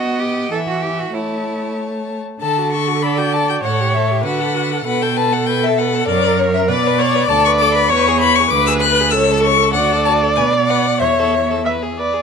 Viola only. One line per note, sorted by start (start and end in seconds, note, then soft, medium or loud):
0.00 0.51 B3 medium
0.52 1.14 E3 soft
1.15 2.19 A3 soft
2.42 3.03 A4 medium
3.02 3.63 D5 medium
3.64 4.24 C#5 medium
4.25 4.84 B4 medium
4.86 6.09 A4 medium
6.08 6.70 A#4 medium
6.68 7.00 B4 medium
6.99 7.28 C#5 medium
7.29 7.92 D5 medium
7.90 8.50 C#5 medium
8.51 9.14 B4 medium
9.12 9.74 A4 medium
9.74 10.98 D5 loud
11.01 11.58 C#5 medium
11.65 11.73 E5 medium
11.98 12.22 D5 medium